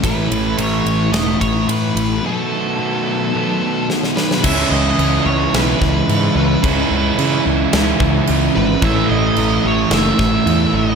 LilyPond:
<<
  \new Staff \with { instrumentName = "Lead electric guitar" } { \time 4/4 \key cis \minor \tempo 4 = 109 b'4 cis''4 dis''8 cis''8 b'4 | a'2. r8 b'8 | e''8 dis''4 cis''8 b'4. b'8~ | b'4. r2 b'8 |
e''8 dis''4 cis''8 e''4. dis''8 | }
  \new Staff \with { instrumentName = "Overdriven electric guitar" } { \time 4/4 \key cis \minor <a, e a cis' e'>1 | <b, dis a b fis'>1 | <cis e gis cis' e'>1 | <cis e gis cis' e'>1 |
<a, e a cis' e'>1 | }
  \new Staff \with { instrumentName = "Distorted electric guitar" } { \clef bass \time 4/4 \key cis \minor <a, e a>4 <a, e a>4 <a, e a>8 <e a>4 <e a>8 | <b, fis b>4 <b, fis b>4 <b, fis b>8 <fis b>4 <fis b>8 | <cis gis cis'>8 <gis cis'>8 <cis gis cis'>8 <gis cis'>8 <cis gis cis'>8 <gis cis'>8 <cis gis cis'>8 <gis cis'>8 | <cis gis cis'>8 <gis cis'>8 <cis gis cis'>8 <gis cis'>8 <cis gis cis'>8 <gis cis'>8 <cis gis cis'>8 <gis cis'>8 |
<a, e a>8 <e a>8 <a, e a>8 <e a>8 <a, e a>8 <e a>8 <a, e a>8 <e a>8 | }
  \new Staff \with { instrumentName = "Overdriven electric guitar" } { \clef bass \time 4/4 \key cis \minor <a, e a>2 <a, e a>2 | <b, fis b>2 <b, fis b>2 | <cis gis cis'>2 <cis gis cis'>2 | <cis gis cis'>2 <cis gis cis'>2 |
<a, e a>2 <a, e a>2 | }
  \new Staff \with { instrumentName = "Picked electric bass" } { \clef bass \time 4/4 \key cis \minor a,,8 a,,8 a,,8 a,,8 e,,8 a,,8 a,8 a,,8 | r1 | cis,8 cis,8 cis,8 cis,8 b,,8 cis,8 gis,8 cis,8 | cis,8 cis,8 cis8 cis,8 cis,8 cis,8 cis,8 gis,,8 |
a,,8 a,,8 a,,8 a,,8 fis,,8 a,,8 e,8 a,,8 | }
  \new DrumStaff \with { instrumentName = "Drums" } \drummode { \time 4/4 <bd cymr>8 cymr8 cymr8 cymr8 <cymr sn>8 <bd cymr>8 cymr8 cymr8 | r4 r4 r4 sn16 sn16 sn16 sn16 | <cymc bd>4 cymc4 <cymc sn>8 <bd sn>8 cymc4 | <cymc bd>4 cymc4 <cymc sn>8 bd8 cymc4 |
<cymc bd>4 cymc4 <cymc sn>8 <bd sn>8 cymc4 | }
>>